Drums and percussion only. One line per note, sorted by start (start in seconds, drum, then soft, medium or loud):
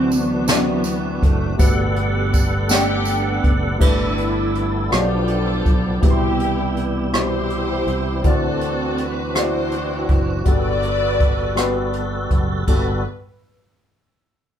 0.12 closed hi-hat soft
0.12 tambourine soft
0.48 snare medium
0.48 closed hi-hat medium
0.48 tambourine medium
0.84 closed hi-hat soft
0.84 tambourine soft
1.23 kick medium
1.23 closed hi-hat soft
1.59 kick medium
1.59 closed hi-hat medium
1.59 tambourine soft
1.96 closed hi-hat soft
2.33 kick medium
2.33 closed hi-hat soft
2.33 tambourine soft
2.69 snare medium
2.69 closed hi-hat medium
2.69 tambourine medium
3.05 closed hi-hat soft
3.05 tambourine soft
3.44 kick medium
3.44 closed hi-hat soft
3.81 kick medium
3.81 crash medium
4.18 closed hi-hat soft
4.55 closed hi-hat soft
4.92 cross-stick medium
4.92 closed hi-hat medium
5.28 closed hi-hat soft
5.66 kick medium
5.66 closed hi-hat soft
6.02 kick medium
6.02 closed hi-hat medium
6.40 closed hi-hat soft
6.77 closed hi-hat soft
7.14 cross-stick medium
7.14 closed hi-hat medium
7.50 closed hi-hat soft
7.87 closed hi-hat soft
8.24 kick medium
8.24 closed hi-hat medium
8.61 closed hi-hat soft
8.98 closed hi-hat soft
9.35 cross-stick loud
9.35 closed hi-hat medium
9.71 closed hi-hat soft
10.09 kick medium
10.09 closed hi-hat soft
10.45 kick medium
10.45 closed hi-hat medium
10.83 closed hi-hat soft
11.20 kick medium
11.20 closed hi-hat soft
11.57 cross-stick medium
11.57 closed hi-hat medium
11.93 closed hi-hat soft
12.31 kick medium
12.31 closed hi-hat soft
12.67 kick medium
12.67 crash medium